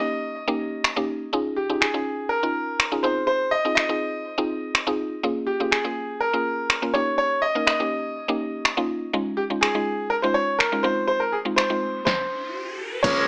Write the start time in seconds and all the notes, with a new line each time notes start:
Already playing: D#5
0.00 A#3 C#4 D#4 G4
0.48 A#3 C#4 D#4 G4
0.84 finger snap
0.96 A#3 C#4 D#4 G4
1.33 C#4 D#4 F4 G#4
1.56 G4
1.70 C#4 D#4 F4 G#4
1.81 G#4, finger snap
1.94 C#4 D#4 F4 G#4
2.29 A#4
2.43 C#4 D#4 F4 A#4
2.80 finger snap
2.92 C#4 D#4 F4 G#4
3.03 C4 D#4 F4 G#4 C5
3.27 C5
3.51 D#5
3.65 C4 D#4 F4 G#4
3.75 D#5, finger snap
3.89 C4 D#4 F4 G#4
4.38 C4 D#4 F4 G#4
4.75 finger snap
4.87 C4 D#4 F4 G#4
5.23 A#3 C#4 F4 G#4
5.47 G4
5.60 A#3 C#4 F4 G#4
5.71 G#4, finger snap
5.84 A#3 C#4 F4 G#4
6.21 A#4
6.33 A#3 C#4 F4 G#4
6.70 finger snap
6.82 A#3 C#4 F4 A#4
6.94 A#3 C#4 D#4 G4 C#5
7.18 C#5
7.42 D#5
7.55 A#3 C#4 D#4 A#4
7.67 D#5, finger snap
7.80 A#3 C#4 D#4 G4
8.28 A#3 C#4 D#4 G4
8.65 finger snap
8.77 A#3 C#4 D#4 F4
9.13 G#3 C#4 D#4 F4
9.37 G4
9.50 G#3 C#4 D#4 F4
9.61 G#4, finger snap
9.75 G#3 C#4 D#4 F4
10.10 A#4
10.22 G#3 C#4 D#4 F4 C5
10.34 C#5
10.59 A#4, finger snap
10.72 G#3 C#4 D#4 F4
10.83 G#3 C4 D#4 F4 C5
11.08 C5, riser
11.20 A#4
11.32 G#4
11.45 G#3 C4 D#4 F4
11.56 C5, finger snap
11.70 G#3 C4 D#4 F4
12.05 C5, kick, snare
13.03 G#3 A#3 C#4 F4 G#4 C#5, kick, closed hi-hat, crash, impact